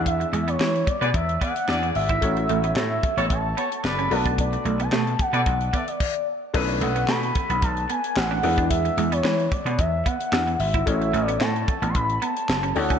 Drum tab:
CC |----------------|----------------|------------x---|x---------------|
HH |xxxx-xxxxxxx-xox|xxxx--xxx-xx-xox|xxxx-xxxxxxx----|-xxx-xxxxxxx--ox|
CP |----x-------x---|----x-------x---|----x-----------|----x-------x---|
SD |----o-------o---|----o-------o---|----o-----------|----o-------o---|
BD |o-----o-o-o----o|o-----o-o------o|o-----o-o-o-o---|o-----o-o------o|

CC |----------------|----------------|
HH |xxxx-xxxx-xx-xox|xxxx-xxxxxxx-xox|
CP |----x-------x---|----x-------x---|
SD |----o-------o---|----o-------o---|
BD |o-----o-o-o----o|o-----o-o------o|